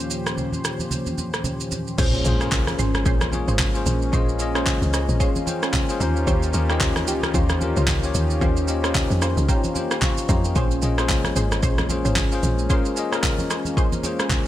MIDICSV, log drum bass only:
0, 0, Header, 1, 2, 480
1, 0, Start_track
1, 0, Tempo, 535714
1, 1779, Time_signature, 4, 2, 24, 8
1, 12969, End_track
2, 0, Start_track
2, 0, Title_t, "Log drum bass"
2, 0, Program_c, 0, 39
2, 1778, Note_on_c, 0, 34, 117
2, 2009, Note_off_c, 0, 34, 0
2, 2019, Note_on_c, 0, 34, 107
2, 2481, Note_off_c, 0, 34, 0
2, 2499, Note_on_c, 0, 32, 97
2, 2730, Note_off_c, 0, 32, 0
2, 2739, Note_on_c, 0, 34, 93
2, 3104, Note_off_c, 0, 34, 0
2, 3117, Note_on_c, 0, 32, 90
2, 3446, Note_off_c, 0, 32, 0
2, 3460, Note_on_c, 0, 34, 100
2, 3691, Note_off_c, 0, 34, 0
2, 3701, Note_on_c, 0, 34, 118
2, 4288, Note_off_c, 0, 34, 0
2, 4318, Note_on_c, 0, 37, 90
2, 4549, Note_off_c, 0, 37, 0
2, 4558, Note_on_c, 0, 34, 94
2, 4655, Note_off_c, 0, 34, 0
2, 5380, Note_on_c, 0, 39, 100
2, 5611, Note_off_c, 0, 39, 0
2, 5620, Note_on_c, 0, 39, 114
2, 5851, Note_off_c, 0, 39, 0
2, 5859, Note_on_c, 0, 39, 101
2, 6339, Note_on_c, 0, 37, 87
2, 6353, Note_off_c, 0, 39, 0
2, 6570, Note_off_c, 0, 37, 0
2, 6579, Note_on_c, 0, 39, 98
2, 6944, Note_off_c, 0, 39, 0
2, 6958, Note_on_c, 0, 37, 101
2, 7286, Note_off_c, 0, 37, 0
2, 7300, Note_on_c, 0, 39, 89
2, 7530, Note_off_c, 0, 39, 0
2, 7539, Note_on_c, 0, 39, 113
2, 8127, Note_off_c, 0, 39, 0
2, 8157, Note_on_c, 0, 41, 87
2, 8389, Note_off_c, 0, 41, 0
2, 8398, Note_on_c, 0, 37, 85
2, 8495, Note_off_c, 0, 37, 0
2, 9219, Note_on_c, 0, 41, 101
2, 9450, Note_off_c, 0, 41, 0
2, 9460, Note_on_c, 0, 34, 116
2, 9691, Note_off_c, 0, 34, 0
2, 9699, Note_on_c, 0, 34, 101
2, 10161, Note_off_c, 0, 34, 0
2, 10179, Note_on_c, 0, 32, 96
2, 10410, Note_off_c, 0, 32, 0
2, 10419, Note_on_c, 0, 34, 92
2, 10784, Note_off_c, 0, 34, 0
2, 10798, Note_on_c, 0, 32, 95
2, 11126, Note_off_c, 0, 32, 0
2, 11140, Note_on_c, 0, 34, 93
2, 11371, Note_off_c, 0, 34, 0
2, 12969, End_track
0, 0, End_of_file